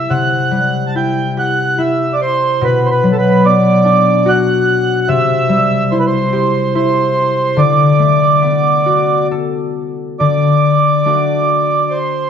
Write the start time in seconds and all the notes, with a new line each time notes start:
Already playing: G3 E4 G4 E5
0.10 C3 F#5
0.51 G3
0.87 A5
0.95 E4 G5
1.37 G4 F#5
1.78 E4 E5
2.13 D5
2.22 C5
2.61 B2 B4
2.85 C5
2.91 B4
3.03 F#3
3.12 A4
3.18 B4
3.44 B3 D5
3.85 D4
4.26 F#4 F#5
5.01 F#5
5.08 C3 E5
5.49 G3
5.92 E4 C5
5.99 B4
6.07 C5
6.33 G4
6.75 E4 C5
7.56 D3 D5
7.99 A3
8.42 B3
8.86 F#4
9.31 A4
10.20 D3 D5
11.05 A3 D4 F#4
11.91 C5